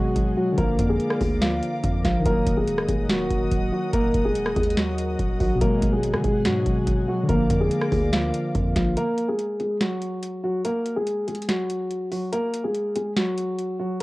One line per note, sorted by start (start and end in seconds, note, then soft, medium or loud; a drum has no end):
0.00 0.15 G#1 loud
0.00 0.60 B2 medium
0.00 0.33 F#3 medium
0.00 0.60 F#3 medium
0.00 0.59 G#3 medium
0.00 0.33 F#4 medium
0.00 0.56 G#4 medium
0.00 0.54 D#5 medium
0.00 0.54 F#5 medium
0.00 0.56 G#5 medium
0.16 0.36 G#1 loud
0.16 kick medium
0.16 closed hi-hat medium
0.37 0.53 F#3 medium
0.37 0.53 F#4 medium
0.52 2.19 D3 medium
0.58 0.78 A#1 loud
0.58 2.22 F3 medium
0.58 0.88 A#3 medium
0.58 0.87 A#4 loud
0.58 5.57 A#4 medium
0.58 2.24 D5 medium
0.58 2.24 F5 medium
0.58 2.24 D6 medium
0.58 kick loud
0.58 closed hi-hat medium
0.63 2.25 A#3 medium
0.79 0.99 F2 loud
0.79 kick medium
0.79 closed hi-hat medium
0.89 1.19 G#3 medium
0.89 1.19 G#4 medium
1.00 closed hi-hat medium
1.10 cross-stick loud
1.21 1.61 D2 loud
1.21 1.37 G#3 medium
1.21 1.37 G#4 medium
1.21 kick medium
1.21 open hi-hat medium
1.42 2.01 F3 medium
1.42 2.01 F4 medium
1.42 snare loud
1.42 closed hi-hat medium
1.63 closed hi-hat medium
1.84 2.04 F2 loud
1.84 kick loud
1.84 closed hi-hat medium
2.05 2.25 A#1 loud
2.05 2.21 F3 medium
2.05 2.21 F4 medium
2.05 kick loud
2.05 snare medium
2.05 closed hi-hat medium
2.20 5.54 D#3 medium
2.25 2.46 D#1 loud
2.25 5.57 F#3 medium
2.25 2.56 A#3 medium
2.25 2.55 A#4 loud
2.25 7.25 D#5 medium
2.25 5.58 F#5 medium
2.25 5.58 D#6 medium
2.25 kick loud
2.25 closed hi-hat medium
2.31 5.60 A#3 medium
2.47 2.79 D#1 loud
2.47 kick loud
2.47 closed hi-hat medium
2.57 2.87 G#3 medium
2.57 2.87 G#4 medium
2.68 closed hi-hat medium
2.78 2.88 D1 loud
2.78 cross-stick loud
2.88 3.29 D#1 loud
2.88 3.05 G#3 medium
2.88 3.05 G#4 medium
2.88 kick medium
2.88 closed hi-hat medium
3.09 3.69 F#3 medium
3.09 3.69 F#4 medium
3.09 snare loud
3.09 closed hi-hat medium
3.30 3.51 D#1 loud
3.30 kick medium
3.30 closed hi-hat medium
3.51 3.72 D1 loud
3.51 kick medium
3.51 closed hi-hat medium
3.72 3.89 F#3 medium
3.72 3.89 F#4 medium
3.93 4.14 D#1 loud
3.93 4.23 A#3 medium
3.93 4.23 A#4 loud
3.93 kick loud
3.93 closed hi-hat medium
4.14 4.55 D#1 loud
4.14 kick medium
4.14 closed hi-hat medium
4.25 4.55 G#3 medium
4.25 4.54 G#4 medium
4.35 closed hi-hat medium
4.46 cross-stick loud
4.56 5.17 D#2 loud
4.56 4.73 G#3 medium
4.56 4.73 G#4 medium
4.56 kick medium
4.56 closed hi-hat medium
4.63 closed hi-hat medium
4.70 closed hi-hat medium
4.77 5.37 F#3 medium
4.77 5.36 F#4 medium
4.77 snare loud
4.77 closed hi-hat medium
4.98 closed hi-hat medium
5.19 5.39 D#1 loud
5.19 kick medium
5.19 closed hi-hat medium
5.40 5.60 A#1 loud
5.40 5.57 F#3 medium
5.40 5.56 F#4 medium
5.40 kick loud
5.40 open hi-hat medium
5.55 6.61 B2 medium
5.61 5.81 G#1 loud
5.61 6.64 F#3 medium
5.61 5.91 A#3 medium
5.61 7.27 G#4 medium
5.61 5.91 A#4 loud
5.61 7.27 F#5 medium
5.61 7.27 G#5 medium
5.61 kick loud
5.61 closed hi-hat medium
5.67 6.67 G#3 medium
5.82 6.15 G#1 loud
5.82 kick loud
5.82 closed hi-hat medium
5.93 6.23 G#3 medium
5.93 6.22 G#4 medium
6.03 closed hi-hat medium
6.14 6.24 D#3 loud
6.14 cross-stick loud
6.24 6.47 G#1 loud
6.24 6.41 G#3 medium
6.24 6.40 G#4 medium
6.24 kick medium
6.24 closed hi-hat medium
6.45 6.65 G#2 loud
6.45 7.05 F#3 medium
6.45 7.04 F#4 medium
6.45 snare loud
6.45 closed hi-hat medium
6.63 6.86 G#1 loud
6.63 7.28 B2 medium
6.63 7.29 F#3 soft
6.63 kick medium
6.63 closed hi-hat medium
6.69 7.31 G#3 medium
6.87 7.07 G#1 loud
6.87 kick medium
6.87 closed hi-hat medium
7.08 7.25 F#3 medium
7.08 7.24 F#4 medium
7.23 8.91 D3 medium
7.29 7.49 A#1 loud
7.29 8.93 F3 medium
7.29 7.59 A#3 medium
7.29 8.95 A#4 medium
7.29 7.59 A#4 loud
7.29 8.95 D5 medium
7.29 8.95 F5 medium
7.29 8.95 D6 medium
7.29 kick loud
7.29 closed hi-hat medium
7.35 8.96 A#3 medium
7.50 7.70 F2 loud
7.50 kick loud
7.50 closed hi-hat medium
7.61 7.91 G#3 medium
7.61 7.90 G#4 medium
7.71 closed hi-hat medium
7.81 cross-stick loud
7.92 8.32 D2 loud
7.92 8.09 G#3 medium
7.92 8.08 G#4 medium
7.92 kick medium
7.92 open hi-hat medium
8.13 8.72 F3 medium
8.13 8.72 F4 medium
8.13 snare loud
8.13 closed hi-hat medium
8.34 closed hi-hat medium
8.55 8.75 F2 loud
8.55 kick medium
8.55 closed hi-hat medium
8.76 8.96 A#1 loud
8.76 8.93 F3 medium
8.76 8.92 F4 medium
8.76 kick loud
8.76 snare medium
8.76 closed hi-hat medium
8.97 9.27 A#3 medium
8.97 9.26 A#4 loud
8.97 closed hi-hat medium
9.18 closed hi-hat medium
9.28 9.58 G#3 medium
9.28 9.58 G#4 medium
9.39 closed hi-hat medium
9.60 9.76 G#3 medium
9.60 9.76 G#4 medium
9.60 closed hi-hat medium
9.81 10.40 F#3 medium
9.81 10.40 F#4 medium
9.81 snare loud
9.81 closed hi-hat medium
10.02 closed hi-hat medium
10.23 closed hi-hat medium
10.44 10.60 F#3 medium
10.44 10.60 F#4 medium
10.65 10.95 A#3 medium
10.65 10.94 A#4 loud
10.65 closed hi-hat medium
10.86 closed hi-hat medium
10.96 11.26 G#3 medium
10.96 11.26 G#4 medium
11.07 closed hi-hat medium
11.28 11.44 G#3 medium
11.28 11.44 G#4 medium
11.28 closed hi-hat medium
11.35 closed hi-hat medium
11.42 closed hi-hat medium
11.48 12.08 F#3 medium
11.48 12.08 F#4 medium
11.48 snare loud
11.48 closed hi-hat medium
11.70 closed hi-hat medium
11.91 closed hi-hat medium
12.11 12.28 F#3 medium
12.11 12.28 F#4 medium
12.11 open hi-hat medium
12.32 12.63 A#3 medium
12.32 12.62 A#4 loud
12.32 closed hi-hat medium
12.54 closed hi-hat medium
12.64 12.94 G#3 medium
12.64 12.94 G#4 medium
12.75 closed hi-hat medium
12.96 13.12 G#3 medium
12.96 13.12 G#4 medium
12.96 closed hi-hat medium
13.16 13.76 F#3 medium
13.16 13.76 F#4 medium
13.16 snare loud
13.16 closed hi-hat medium
13.38 closed hi-hat medium
13.59 closed hi-hat medium
13.79 13.96 F#3 medium
13.79 13.96 F#4 medium